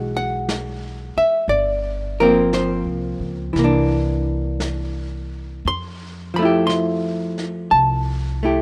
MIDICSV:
0, 0, Header, 1, 5, 480
1, 0, Start_track
1, 0, Key_signature, 0, "major"
1, 0, Tempo, 1032702
1, 698, Time_signature, 4, 2, 24, 8
1, 4006, End_track
2, 0, Start_track
2, 0, Title_t, "Hollow-body jazz guitar"
2, 0, Program_c, 0, 26
2, 0, Note_on_c, 0, 52, 49
2, 0, Note_on_c, 0, 56, 32
2, 0, Note_on_c, 0, 66, 39
2, 0, Note_on_c, 0, 78, 77
2, 72, Note_off_c, 0, 78, 0
2, 77, Note_on_c, 0, 78, 73
2, 545, Note_off_c, 0, 78, 0
2, 547, Note_on_c, 0, 76, 71
2, 692, Note_off_c, 0, 52, 0
2, 692, Note_off_c, 0, 76, 0
2, 694, Note_on_c, 0, 74, 78
2, 700, Note_off_c, 0, 56, 0
2, 707, Note_off_c, 0, 66, 0
2, 1024, Note_on_c, 0, 70, 58
2, 1026, Note_on_c, 0, 53, 42
2, 1030, Note_on_c, 0, 58, 47
2, 1033, Note_on_c, 0, 60, 56
2, 1034, Note_off_c, 0, 74, 0
2, 1162, Note_off_c, 0, 70, 0
2, 1182, Note_on_c, 0, 72, 61
2, 1639, Note_off_c, 0, 53, 0
2, 1641, Note_on_c, 0, 52, 41
2, 1655, Note_off_c, 0, 58, 0
2, 1657, Note_off_c, 0, 60, 0
2, 1669, Note_on_c, 0, 58, 38
2, 1693, Note_on_c, 0, 62, 49
2, 2457, Note_off_c, 0, 72, 0
2, 2616, Note_off_c, 0, 52, 0
2, 2630, Note_off_c, 0, 58, 0
2, 2638, Note_on_c, 0, 84, 82
2, 2642, Note_off_c, 0, 62, 0
2, 2947, Note_on_c, 0, 53, 40
2, 2955, Note_off_c, 0, 84, 0
2, 2957, Note_on_c, 0, 83, 62
2, 2969, Note_on_c, 0, 57, 41
2, 2986, Note_on_c, 0, 64, 41
2, 2997, Note_off_c, 0, 83, 0
2, 2999, Note_on_c, 0, 67, 42
2, 3097, Note_off_c, 0, 67, 0
2, 3099, Note_on_c, 0, 84, 74
2, 3582, Note_off_c, 0, 84, 0
2, 3584, Note_on_c, 0, 81, 68
2, 3897, Note_off_c, 0, 81, 0
2, 3912, Note_off_c, 0, 57, 0
2, 3918, Note_on_c, 0, 57, 33
2, 3920, Note_off_c, 0, 64, 0
2, 3925, Note_on_c, 0, 64, 36
2, 3930, Note_on_c, 0, 67, 36
2, 4006, Note_off_c, 0, 53, 0
2, 4006, Note_off_c, 0, 57, 0
2, 4006, Note_off_c, 0, 64, 0
2, 4006, Note_off_c, 0, 67, 0
2, 4006, End_track
3, 0, Start_track
3, 0, Title_t, "Upright bass"
3, 0, Program_c, 1, 32
3, 0, Note_on_c, 1, 35, 71
3, 528, Note_off_c, 1, 35, 0
3, 687, Note_on_c, 1, 31, 67
3, 1308, Note_off_c, 1, 31, 0
3, 1328, Note_on_c, 1, 36, 43
3, 1479, Note_off_c, 1, 36, 0
3, 1485, Note_on_c, 1, 37, 57
3, 1637, Note_off_c, 1, 37, 0
3, 1650, Note_on_c, 1, 36, 67
3, 2602, Note_off_c, 1, 36, 0
3, 2626, Note_on_c, 1, 41, 61
3, 3571, Note_off_c, 1, 41, 0
3, 3587, Note_on_c, 1, 36, 73
3, 4006, Note_off_c, 1, 36, 0
3, 4006, End_track
4, 0, Start_track
4, 0, Title_t, "Muted upright bass strokes"
4, 543, Note_on_c, 9, 29, 35
4, 590, Note_off_c, 9, 29, 0
4, 4006, End_track
5, 0, Start_track
5, 0, Title_t, "Drums"
5, 226, Note_on_c, 9, 25, 31
5, 226, Note_on_c, 9, 38, 41
5, 226, Note_on_c, 9, 44, 55
5, 273, Note_off_c, 9, 38, 0
5, 273, Note_off_c, 9, 44, 0
5, 700, Note_off_c, 9, 25, 0
5, 700, Note_on_c, 9, 25, 27
5, 1176, Note_off_c, 9, 25, 0
5, 1176, Note_on_c, 9, 25, 29
5, 1176, Note_on_c, 9, 38, 33
5, 1176, Note_on_c, 9, 44, 47
5, 1222, Note_off_c, 9, 38, 0
5, 1222, Note_off_c, 9, 44, 0
5, 1654, Note_off_c, 9, 25, 0
5, 1654, Note_on_c, 9, 25, 26
5, 1654, Note_on_c, 9, 38, 25
5, 1700, Note_off_c, 9, 38, 0
5, 2139, Note_off_c, 9, 25, 0
5, 2139, Note_on_c, 9, 25, 37
5, 2139, Note_on_c, 9, 38, 38
5, 2139, Note_on_c, 9, 44, 49
5, 2185, Note_off_c, 9, 38, 0
5, 2185, Note_off_c, 9, 44, 0
5, 2626, Note_off_c, 9, 25, 0
5, 2626, Note_on_c, 9, 25, 33
5, 3111, Note_off_c, 9, 25, 0
5, 3111, Note_on_c, 9, 25, 27
5, 3111, Note_on_c, 9, 38, 36
5, 3111, Note_on_c, 9, 44, 47
5, 3157, Note_off_c, 9, 38, 0
5, 3157, Note_off_c, 9, 44, 0
5, 3429, Note_on_c, 9, 38, 22
5, 3475, Note_off_c, 9, 38, 0
5, 3587, Note_off_c, 9, 25, 0
5, 3587, Note_on_c, 9, 25, 33
5, 4006, Note_off_c, 9, 25, 0
5, 4006, End_track
0, 0, End_of_file